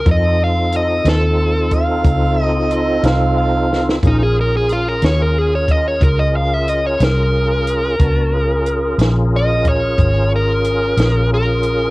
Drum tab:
HH |x---x-x---x-x---x-x-----|x---x-x---x-x---x-x---x-|x---x-x---x-x---x-x---x-|
SD |------o-----------o---oo|------o-----------o-----|------o-----------o-----|
BD |o---------o-o-----------|o---------o-o-----------|o---------o-o-----------|